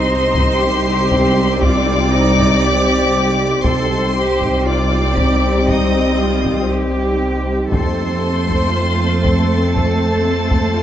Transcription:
0.00 3.61 C2 medium
0.00 3.61 G3 medium
0.00 3.62 G3 medium
0.00 3.61 C4 medium
0.00 3.62 C4 medium
0.00 0.58 D#4 medium
0.00 3.61 D#4 medium
0.00 3.65 G4 medium
0.00 1.61 C5 medium
0.00 3.61 C5 medium
0.00 1.62 C6 medium
0.35 taiko medium
0.60 1.61 G4 medium
1.11 taiko medium
1.61 2.12 F4 medium
1.61 3.65 D5 medium
1.61 3.65 D6 medium
1.61 taiko medium
2.12 2.63 D#4 medium
2.38 taiko medium
2.63 3.65 G4 medium
3.64 7.68 C2 medium
3.64 7.68 G3 medium
3.64 7.55 G3 medium
3.64 7.67 C4 medium
3.64 7.55 C4 medium
3.64 7.69 D#4 medium
3.64 7.68 G4 medium
3.64 4.16 A4 medium
3.64 4.65 C5 medium
3.64 7.69 C5 medium
3.64 4.66 C6 medium
3.64 taiko medium
4.16 4.66 G4 medium
4.41 taiko medium
4.66 5.17 F4 medium
4.66 5.69 D5 medium
4.66 5.67 D6 medium
5.17 5.68 G4 soft
5.17 taiko medium
5.68 6.19 D#4 soft
5.68 6.70 D#5 medium
5.68 6.69 D#6 medium
5.68 taiko medium
6.19 6.70 F4 soft
6.45 taiko medium
6.69 7.71 G4 medium
7.72 10.83 F2 soft
7.72 10.83 A3 soft
7.72 10.83 C4 soft
7.72 10.83 C4 medium
7.72 8.71 A4 soft
7.72 10.83 A4 medium
7.72 9.72 C5 medium
7.72 10.83 C5 medium
7.72 9.71 C6 medium
7.72 10.83 C7 soft
7.72 taiko medium
8.48 taiko medium
8.73 9.24 F4 soft
8.73 10.83 A6 soft
9.24 10.77 A4 soft
9.24 taiko medium
9.75 10.83 A4 soft
9.75 10.83 A5 medium
9.75 taiko medium
10.51 taiko medium
10.76 10.83 F4 soft

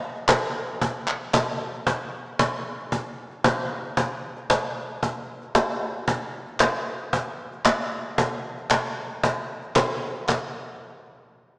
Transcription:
0.02 cajon slap soft
0.16 cajon slap soft
0.29 cajon bass loud
0.29 cajon slap loud
0.29 clap loud
0.42 cajon slap soft
0.55 cajon slap soft
0.68 cajon slap soft
0.81 cajon bass loud
0.95 cajon slap soft
1.08 cajon slap soft
1.08 clap medium
1.21 cajon slap soft
1.34 cajon bass loud
1.34 cajon slap loud
1.34 clap medium
1.47 cajon slap soft
1.60 cajon slap soft
1.73 cajon slap soft
1.87 cajon bass loud
2.00 cajon slap soft
2.13 cajon slap soft
2.26 cajon slap soft
2.39 cajon bass loud
2.39 cajon slap loud
2.52 cajon slap soft
2.66 cajon slap soft
2.79 cajon slap soft
2.92 cajon bass loud
3.05 cajon slap soft
3.18 cajon slap soft
3.31 cajon slap soft
3.44 cajon bass loud
3.44 cajon slap loud
3.58 cajon slap soft
3.71 cajon slap soft
3.84 cajon slap soft
3.97 cajon bass loud
4.11 cajon slap soft
4.23 cajon slap soft
4.37 cajon slap soft
4.50 cajon bass loud
4.50 cajon slap loud
4.63 cajon slap soft
4.76 cajon slap soft
4.89 cajon slap soft
5.03 cajon bass loud
5.16 cajon slap soft
5.29 cajon slap soft
5.42 cajon slap soft
5.55 cajon bass loud
5.55 cajon slap loud
5.68 cajon slap soft
5.81 cajon slap soft
5.94 cajon slap soft
6.08 cajon bass loud
6.21 cajon slap soft
6.34 cajon slap soft
6.47 cajon slap soft
6.60 cajon bass loud
6.60 cajon slap loud
6.60 clap medium
6.73 cajon slap soft
6.87 cajon slap soft
7.00 cajon slap soft
7.13 cajon bass loud
7.26 cajon slap soft
7.39 cajon slap soft
7.52 cajon slap soft
7.65 cajon bass loud
7.65 cajon slap loud
7.65 clap medium
7.79 cajon slap soft
7.92 cajon slap soft
8.05 cajon slap soft
8.18 cajon bass loud
8.31 cajon slap soft
8.44 cajon slap soft
8.58 cajon slap soft
8.71 cajon bass loud
8.71 cajon slap loud
8.71 clap medium
8.84 cajon slap soft
8.97 cajon slap soft
9.10 cajon slap soft
9.23 cajon bass loud
9.37 cajon slap soft
9.50 cajon slap soft
9.63 cajon slap soft
9.76 cajon bass loud
9.76 cajon slap loud
9.76 clap medium
9.89 cajon slap soft
10.02 cajon slap soft
10.15 cajon slap soft
10.29 cajon bass loud
10.29 clap medium

